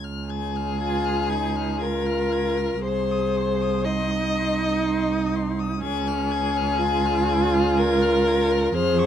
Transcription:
0.00 2.80 C#2 medium
0.00 0.31 F6 soft
0.28 1.83 G#4 medium
0.28 0.57 G#6 soft
0.56 0.80 F6 soft
0.79 1.30 F4 medium
0.79 1.06 G#6 soft
1.05 1.31 F6 soft
1.29 1.80 D#4 medium
1.29 1.57 G#6 soft
1.56 1.79 F6 soft
1.79 2.82 F4 medium
1.79 2.83 A#4 medium
1.79 2.07 G#6 soft
2.06 2.33 F6 soft
2.32 2.59 G#6 soft
2.57 2.83 F6 soft
2.83 5.84 C2 medium
2.83 3.86 G#4 medium
2.83 3.86 C5 medium
2.83 3.13 C6 medium
3.11 3.38 D#6 soft
3.36 3.63 C6 soft
3.61 3.85 D#6 soft
3.85 5.81 D#4 medium
3.85 5.34 D#5 medium
3.85 4.12 C6 soft
4.11 4.39 D#6 soft
4.37 4.63 C6 soft
4.61 4.86 D#6 soft
4.86 5.13 C6 medium
5.12 5.36 D#6 soft
5.35 5.61 C6 soft
5.59 5.82 D#6 soft
5.81 8.75 C#2 medium
5.81 6.80 C#4 medium
5.81 7.79 G#4 medium
5.81 6.09 G#6 medium
6.07 6.33 F6 medium
6.31 6.58 G#6 medium
6.56 6.79 F6 medium
6.79 8.75 F4 medium
6.79 7.07 G#6 medium
7.05 7.30 F6 medium
7.29 7.56 G#6 medium
7.54 7.78 F6 medium
7.77 8.76 A#4 loud
7.77 8.03 G#6 medium
8.01 8.29 F6 medium
8.28 8.53 G#6 medium
8.51 8.73 F6 medium
8.73 9.06 F2 medium
8.73 9.06 G#4 medium
8.73 9.06 C5 loud
8.73 9.00 F6 medium
8.98 9.06 C#6 medium

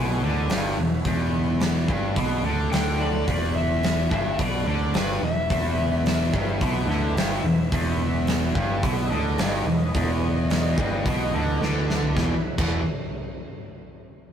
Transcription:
0.00 0.20 B1 loud
0.00 0.22 B2 loud
0.00 1.03 G#3 medium
0.00 1.03 B3 medium
0.00 1.03 E4 medium
0.00 0.74 G#5 medium
0.22 0.48 D2 medium
0.22 0.49 D3 loud
0.49 0.75 G1 medium
0.49 0.77 G2 medium
0.49 snare loud
0.49 open hi-hat medium
0.77 1.03 E1 medium
0.77 1.01 E2 medium
1.05 1.84 E1 medium
1.05 1.88 E2 loud
1.05 3.26 G#3 medium
1.05 3.26 B3 medium
1.05 3.26 E4 medium
1.05 kick loud
1.05 open hi-hat medium
1.60 snare loud
1.60 open hi-hat soft
1.88 2.14 G1 medium
1.88 2.16 G2 medium
1.88 kick loud
2.16 2.42 B1 medium
2.16 2.43 B2 loud
2.16 kick loud
2.16 open hi-hat medium
2.44 2.70 D2 medium
2.44 2.70 D3 loud
2.72 3.24 D2 medium
2.72 3.26 D3 medium
2.72 3.00 G5 medium
2.72 snare loud
2.72 open hi-hat medium
3.00 3.55 D5 medium
3.27 4.07 E1 medium
3.27 4.10 E2 loud
3.27 3.47 A3 medium
3.27 3.47 C4 medium
3.27 3.47 F4 medium
3.27 kick medium
3.27 open hi-hat medium
3.46 5.48 G#3 medium
3.46 5.48 B3 medium
3.46 5.48 E4 medium
3.55 4.11 E5 medium
3.83 snare loud
3.83 open hi-hat medium
4.11 4.37 G1 medium
4.11 4.38 G2 medium
4.11 4.40 E5 medium
4.11 kick loud
4.39 4.65 B1 medium
4.39 4.66 B2 medium
4.39 4.96 D5 medium
4.39 kick loud
4.39 open hi-hat medium
4.66 4.92 D2 medium
4.66 4.94 D3 loud
4.94 5.20 G1 medium
4.94 5.21 G2 medium
4.94 5.23 B4 medium
4.94 snare loud
4.94 open hi-hat medium
5.21 5.47 E1 medium
5.21 5.45 E2 medium
5.21 9.11 E5 medium
5.50 6.29 E1 medium
5.50 6.33 E2 loud
5.50 5.68 F3 medium
5.50 5.68 A3 medium
5.50 5.68 C4 medium
5.50 kick loud
5.50 open hi-hat medium
5.67 7.69 E3 medium
5.67 7.70 G#3 medium
5.67 7.70 B3 medium
6.06 snare loud
6.06 open hi-hat medium
6.33 6.59 G1 loud
6.33 6.60 G2 medium
6.33 kick loud
6.61 6.86 B1 medium
6.61 6.88 B2 loud
6.61 kick loud
6.61 open hi-hat medium
6.87 7.13 D2 medium
6.87 7.16 D3 loud
6.87 snare soft
7.15 7.41 G1 medium
7.15 7.44 G2 loud
7.15 snare loud
7.15 open hi-hat medium
7.42 7.69 E1 medium
7.42 7.67 E2 medium
7.72 8.51 E1 medium
7.72 8.55 E2 loud
7.72 9.93 G#3 medium
7.72 9.92 B3 medium
7.72 9.92 E4 medium
7.72 kick loud
7.72 open hi-hat medium
8.27 snare loud
8.27 open hi-hat medium
8.55 8.81 G1 loud
8.55 8.82 G2 loud
8.55 kick loud
8.83 9.09 B1 medium
8.83 9.10 B2 loud
8.83 kick loud
8.83 open hi-hat medium
9.11 9.37 D2 medium
9.11 9.38 D3 loud
9.11 11.58 D#5 medium
9.38 9.64 G1 medium
9.38 9.66 G2 medium
9.38 snare loud
9.38 open hi-hat medium
9.65 9.92 E1 medium
9.65 9.89 E2 medium
9.95 10.74 E1 medium
9.95 10.77 E2 loud
9.95 12.15 E3 medium
9.95 12.15 G#3 medium
9.95 12.15 B3 medium
9.95 kick loud
9.95 open hi-hat medium
10.50 snare loud
10.50 open hi-hat medium
10.78 11.04 G1 loud
10.78 11.05 G2 loud
10.78 kick loud
11.05 11.31 B1 medium
11.05 11.33 B2 loud
11.05 kick loud
11.05 open hi-hat medium
11.33 11.59 D2 medium
11.33 11.61 D3 loud
11.61 12.13 D2 medium
11.61 12.16 D3 loud
11.61 snare medium
11.90 snare medium
12.03 floor tom medium
12.16 12.32 E1 medium
12.16 12.33 E2 medium
12.16 12.34 B2 medium
12.16 12.34 E3 loud
12.16 12.55 G#3 medium
12.16 12.55 E4 medium
12.16 12.55 B4 medium
12.16 kick loud
12.16 snare medium
12.58 12.84 E1 medium
12.58 12.80 E2 medium
12.58 12.81 B2 medium
12.58 12.81 E3 loud
12.58 kick loud
12.58 crash medium

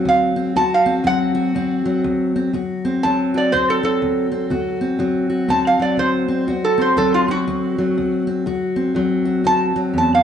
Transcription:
0.00 1.03 F#3 medium
0.00 0.36 C4 medium
0.00 0.56 F#4 medium
0.05 0.51 D2 medium
0.05 0.55 F5 medium
0.36 0.59 C4 medium
0.56 1.01 D2 medium
0.56 1.33 F#4 medium
0.56 0.72 A5 medium
0.74 1.05 F5 medium
0.86 1.54 C4 medium
1.04 1.50 D2 medium
1.04 1.84 F#3 medium
1.04 2.01 F#5 loud
1.35 2.50 F#4 medium
1.55 2.00 D2 medium
1.55 2.34 C4 medium
1.85 3.04 F#3 medium
2.04 2.49 D2 medium
2.36 2.51 C4 medium
2.53 2.99 D2 medium
2.53 3.34 F#4 medium
2.85 3.53 C4 medium
3.03 3.49 D2 medium
3.03 3.83 F#3 medium
3.03 3.35 A5 medium
3.34 4.51 F#4 medium
3.34 3.52 D5 medium
3.52 3.98 D2 medium
3.52 4.31 C4 medium
3.52 3.68 C5 medium
3.70 3.83 A4 medium
3.83 4.99 F#3 medium
3.83 4.80 A4 medium
4.02 4.47 D2 medium
4.32 4.53 C4 medium
4.50 4.96 D2 medium
4.50 5.29 F#4 medium
4.81 5.48 C4 medium
4.99 5.45 D2 medium
4.99 5.79 F#3 medium
5.30 6.47 F#4 medium
5.48 5.94 D2 medium
5.48 6.28 C4 medium
5.48 5.66 A5 medium
5.67 5.82 F5 medium
5.79 6.97 F#3 medium
5.79 5.98 D5 medium
5.97 6.43 D2 medium
5.97 6.63 C5 medium
6.28 6.50 C4 medium
6.47 6.93 D2 medium
6.47 8.43 F#4 medium
6.64 6.80 A4 medium
6.78 7.28 C4 medium
6.78 6.97 C5 medium
6.96 7.43 D2 medium
6.96 7.77 F#3 medium
6.96 7.13 A4 medium
7.14 7.30 F4 medium
7.28 7.47 C4 medium
7.28 8.27 F#4 medium
7.47 7.93 D2 medium
7.47 8.26 C4 medium
7.78 8.95 F#3 medium
7.98 8.43 D2 medium
8.27 8.44 C4 medium
8.46 8.92 D2 medium
8.46 9.24 F#4 medium
8.76 9.43 C4 medium
8.95 9.41 D2 medium
8.95 9.75 F#3 medium
9.25 10.23 F#4 medium
9.44 9.90 D2 medium
9.44 10.23 C4 medium
9.44 9.78 A5 loud
9.76 10.23 F#3 medium
9.93 10.23 E2 medium
9.98 10.12 A5 medium
10.15 10.23 F5 medium

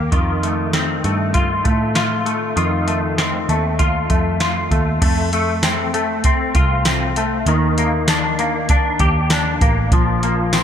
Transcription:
0.00 0.10 D#2 medium
0.00 0.18 A#3 soft
0.00 0.19 D4 medium
0.00 0.12 G4 medium
0.12 1.00 F2 medium
0.12 2.55 D#3 medium
0.12 1.34 F4 medium
0.12 kick loud
0.12 closed hi-hat medium
0.43 1.04 A3 medium
0.43 closed hi-hat soft
0.73 3.18 C4 medium
0.73 snare medium
0.73 closed hi-hat medium
1.04 1.62 G2 medium
1.04 1.64 A3 medium
1.04 closed hi-hat soft
1.34 1.95 F4 medium
1.34 kick medium
1.34 closed hi-hat medium
1.64 2.53 A2 medium
1.64 2.25 A3 medium
1.64 kick medium
1.64 closed hi-hat soft
1.95 2.57 F4 medium
1.95 snare loud
1.95 closed hi-hat medium
2.25 2.87 A3 soft
2.25 closed hi-hat soft
2.56 3.45 F2 medium
2.56 5.01 D#3 medium
2.56 3.79 F4 medium
2.56 closed hi-hat medium
2.87 3.49 A3 medium
2.87 closed hi-hat soft
3.18 5.63 C4 medium
3.18 snare medium
3.18 closed hi-hat medium
3.49 4.07 D#2 medium
3.49 4.09 A3 soft
3.49 closed hi-hat soft
3.79 4.40 F4 medium
3.79 kick medium
3.79 closed hi-hat medium
4.10 4.68 F2 medium
4.10 4.71 A3 medium
4.10 kick medium
4.10 closed hi-hat soft
4.40 6.55 F4 medium
4.40 snare loud
4.40 closed hi-hat medium
4.71 5.00 D#2 medium
4.71 5.01 A3 medium
4.71 kick medium
4.71 closed hi-hat soft
5.02 6.51 F2 loud
5.02 5.32 A3 medium
5.02 kick loud
5.02 closed hi-hat medium
5.02 crash medium
5.33 5.93 A3 medium
5.33 closed hi-hat soft
5.63 6.24 C4 medium
5.63 snare loud
5.63 closed hi-hat medium
5.63 tambourine medium
5.94 7.16 A3 medium
5.94 closed hi-hat soft
6.24 6.85 C4 medium
6.24 kick medium
6.24 closed hi-hat medium
6.55 7.43 C2 medium
6.55 7.53 F4 medium
6.55 kick medium
6.55 closed hi-hat medium
6.85 7.53 C4 medium
6.85 snare loud
6.85 closed hi-hat medium
6.85 tambourine medium
7.16 7.53 A3 medium
7.16 closed hi-hat medium
7.46 8.96 D#2 medium
7.46 9.92 D#3 medium
7.46 closed hi-hat medium
7.78 8.39 A#3 medium
7.78 closed hi-hat soft
8.08 8.68 D4 medium
8.08 snare loud
8.08 closed hi-hat medium
8.08 tambourine medium
8.39 9.61 A#3 medium
8.39 closed hi-hat soft
8.69 9.30 D4 medium
8.69 kick medium
8.69 closed hi-hat medium
8.99 9.58 D#2 medium
8.99 9.98 G4 medium
8.99 kick medium
8.99 closed hi-hat medium
9.30 9.98 D4 medium
9.30 snare loud
9.30 closed hi-hat medium
9.30 tambourine medium
9.61 9.90 A1 medium
9.61 10.23 A#3 medium
9.61 kick medium
9.61 closed hi-hat medium
9.92 10.63 A#1 loud
9.92 10.63 F3 medium
9.92 kick loud
9.92 closed hi-hat medium
10.23 10.63 A#3 medium
10.23 closed hi-hat medium
10.53 10.63 C4 medium
10.53 snare medium
10.53 closed hi-hat medium
10.53 tambourine medium

